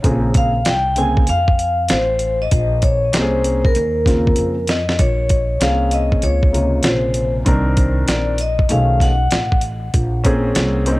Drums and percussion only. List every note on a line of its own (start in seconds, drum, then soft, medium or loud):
0.04 kick loud
0.04 closed hi-hat medium
0.34 kick loud
0.34 closed hi-hat medium
0.65 snare loud
0.65 closed hi-hat medium
0.96 closed hi-hat medium
1.17 kick medium
1.27 closed hi-hat medium
1.48 kick medium
1.59 closed hi-hat medium
1.88 snare loud
1.88 closed hi-hat medium
2.19 closed hi-hat medium
2.51 kick medium
2.51 closed hi-hat medium
2.82 kick medium
2.82 closed hi-hat medium
3.13 snare loud
3.13 closed hi-hat medium
3.44 closed hi-hat medium
3.65 kick medium
3.75 closed hi-hat medium
4.06 kick medium
4.06 snare soft
4.06 closed hi-hat medium
4.27 kick medium
4.36 closed hi-hat medium
4.67 snare medium
4.67 closed hi-hat medium
4.89 snare medium
4.99 kick loud
4.99 closed hi-hat medium
5.29 kick medium
5.29 closed hi-hat medium
5.61 snare medium
5.61 closed hi-hat medium
5.91 closed hi-hat medium
6.12 kick medium
6.22 closed hi-hat medium
6.43 kick medium
6.54 closed hi-hat medium
6.83 snare loud
6.83 closed hi-hat medium
7.14 closed hi-hat medium
7.46 kick loud
7.46 closed hi-hat medium
7.77 kick medium
7.77 closed hi-hat medium
8.08 snare medium
8.08 closed hi-hat medium
8.38 closed hi-hat medium
8.59 kick medium
8.69 closed hi-hat medium
9.00 kick medium
9.00 snare soft
9.00 closed hi-hat medium
9.31 snare loud
9.31 closed hi-hat medium
9.52 kick medium
9.61 closed hi-hat medium
9.94 kick loud
9.94 closed hi-hat medium
10.24 kick medium
10.24 closed hi-hat medium
10.55 snare loud
10.55 closed hi-hat medium
10.86 closed hi-hat medium